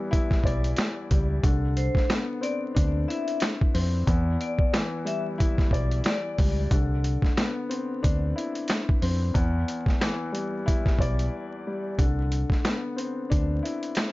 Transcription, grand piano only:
Already playing: E2 E3 G3
0.11 E4
0.45 D5
1.12 G3
1.44 D3
2.10 B3
2.41 C4
2.75 D4
3.08 E4
3.74 C4
4.07 E2
4.73 E3
5.05 G3
5.38 E4
5.73 D5
6.40 G3
6.72 D3
7.38 B3
7.69 C4
8.03 D4
8.36 E4
9.02 C4
9.34 E2
10.01 E3
10.32 G3
10.66 E4
11.00 D5
11.67 G3
11.99 D3
12.65 B3
12.96 C4
13.30 D4
13.63 E4

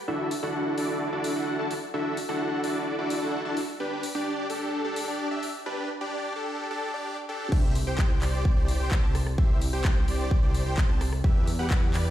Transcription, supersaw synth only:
0.08 D4 E4 F#4 A4 E5
0.43 D4 E4 F#4 A4 F#5
0.78 D4 E4 F#4 A4 D5
1.13 D4 E4 F#4 A4 D5
1.36 D4 E4 F#4 A4 F#5
1.59 D4 E4 F#4 A4 A5
1.94 D4 E4 F#4 A4 E5
2.29 D4 E4 F#4 A4 F#5
2.64 D4 E4 F#4 A4 D5
2.99 D4 E4 F#4 A4 D5
3.22 D4 E4 F#4 A4 F#5
3.45 D4 E4 F#4 A4 A5
3.80 D4 G4 B4
4.15 D4 G4 D5
4.50 D4 G4 A4
4.85 D4 G4 A4
5.08 D4 G4 D5
5.31 D4 G4 E5
5.66 D4 G4 B4
6.01 D4 G4 D5
6.36 D4 G4 A4
6.71 D4 G4 A4
6.94 D4 G4 D5
7.29 D4 G4 A4
7.52 G4 C5 E5
7.87 G4 C5 G5
8.22 G4 C5 D5
8.57 G4 C5 D5
8.80 G4 C5 G5
9.03 G4 C5 A5
9.38 G4 C5 E5
9.73 G4 C5 G5
10.08 G4 C5 D5
10.43 G4 C5 D5
10.66 G4 C5 G5
10.89 G4 C5 A5
11.24 G4 B4 E5
11.59 G4 B4 F#5
11.94 G4 B4 D5

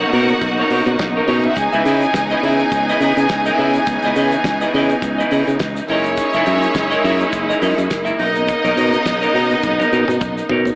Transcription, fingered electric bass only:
0.13 B2
0.42 B1
0.70 B2
0.86 B2
0.99 B1
1.28 B2
1.57 C#2
1.73 C#2
1.85 C#3
2.14 C#2
2.43 C#3
2.72 C#2
3.01 C#3
3.17 C#3
3.30 C#2
3.59 C#3
3.87 C#2
4.04 C#2
4.16 C#3
4.44 C#2
4.74 C#3
5.02 C#2
5.32 C#3
5.47 C#3
5.60 C#2
5.89 F#1
6.34 F#1
6.47 F#2
6.75 F#1
7.04 F#2
7.33 F#1
7.62 F#2
7.78 F#2
7.91 F#1
8.20 B1
8.65 B1
8.77 B2
9.06 B1
9.34 B2
9.64 B1
9.92 B2
10.09 B2
10.21 B1
10.50 B2

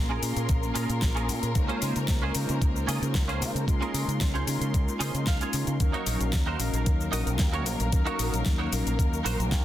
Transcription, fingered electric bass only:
Already playing: A#1
0.22 A#2
0.36 A#2
0.49 A#1
0.75 A#2
0.89 A#2
1.03 A#1
1.28 A#2
1.43 A#2
1.55 C#2
1.82 C#3
1.96 C#3
2.08 C#2
2.35 C#3
2.49 C#3
2.62 C#2
2.88 C#3
3.02 C#3
3.15 C#2
3.41 C#3
3.55 C#3
3.68 C#2
3.94 C#3
4.08 C#3
4.21 C#2
4.47 C#3
4.61 C#3
4.74 C#2
5.00 C#3
5.14 C#3
5.27 C#2
5.53 C#3
5.67 C#3
5.80 D#2
6.06 A#1
6.20 A#1
6.34 D#2
6.59 A#1
6.73 A#1
6.87 D#2
7.13 A#1
7.26 A#1
7.40 D#2
7.66 A#1
7.80 A#1
7.93 D#2
8.19 A#1
8.33 A#1
8.46 D#2
8.72 A#1
8.86 A#1
8.99 D#2
9.25 A#1
9.39 A#1
9.52 D#2

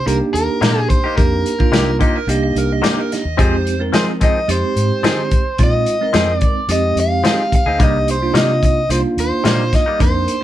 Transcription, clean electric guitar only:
0.61 C3 A#3 D#4 G4
1.04 A#3 D#4 G4
1.72 C3 A#3 D#4 G4
1.99 C3 A#3 D#4 G4
2.82 C3 A#3 D#4 G4
3.37 F3 C4 D#4 G#4
3.93 F3 C4 D#4 G#4
4.21 F3 C4 D#4 G#4
5.03 F3 C4 D#4 G#4
6.13 F3 C4 D#4 G#4
7.24 F3 C4 D#4 G#4
7.66 C4 D#4 G#4
7.79 C3 G3 A#3 D#4
8.34 C3 G3 A#3 D#4
9.44 C3 G3 A#3 D#4
9.86 G3 A#3 D#4

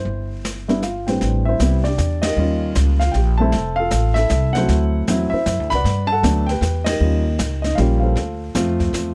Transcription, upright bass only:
0.05 G1
1.22 A1
1.60 C2
1.98 E2
2.37 D#2
2.76 C#2
3.15 A#1
3.53 F1
3.92 A1
4.30 C2
4.68 D2
5.08 E2
5.32 muted upright bass stroke
5.46 F#2
5.60 D2
5.72 C2
5.84 G2
6.23 D2
6.61 E2
7.00 D#2
7.40 C#2
7.78 A#1
8.16 D2
8.55 F2
8.93 E2

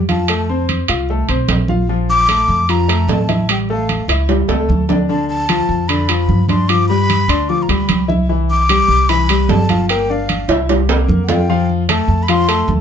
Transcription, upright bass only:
Already playing: F2
0.89 C2
1.29 B1
1.48 A#1
2.48 F2
3.08 A1
4.08 C#2
4.48 C#2
4.69 D2
5.69 F2
6.29 G2
7.28 D2
7.69 D2
7.89 C2
8.88 C2
9.49 G1
10.48 C2
11.08 F2
12.08 F2
12.68 D#2

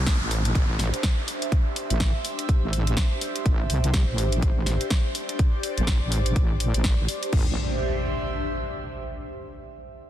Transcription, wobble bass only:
Already playing: C2
0.21 A1
0.55 A1
1.90 A1
2.63 A1
3.46 A1
3.70 C2
4.08 A1
4.42 A1
5.78 A1
6.02 A1
6.36 A1
6.74 A1
7.33 A1

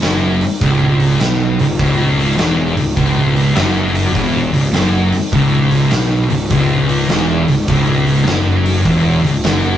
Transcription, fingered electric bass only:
0.03 F#1
0.62 C#1
1.21 B1
1.61 C#1
1.80 C#1
2.39 E1
2.78 C#1
2.97 C#1
3.57 F#1
4.15 E1
4.54 C#1
4.75 F#1
5.33 C#1
5.94 B1
6.32 C#1
6.51 C#1
7.10 E1
7.49 C#1
7.68 C#1
8.27 F#1
8.86 E1
9.24 C#1
9.44 F#1

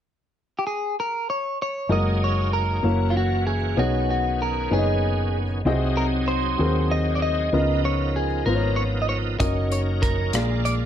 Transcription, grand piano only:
1.89 G#3 D#4 F#4 A#4
2.83 A#3 E4 F#4 C#5
3.77 B2 B3 D#4 G#4 C#5
4.71 B3 D#4 G#4 C#5
4.79 D#5
5.66 C3 C4 F#4 G#4 D#5
6.58 C4 F#4 G#4 A#4
6.66 C5
7.53 C#3 B3 F4 A#4 D#5
8.47 B3 F4 A#4 C5
8.55 C#5
9.40 C#4 F#4 A#4 D#5
10.34 A#2 A#3 F4 G#4 D5

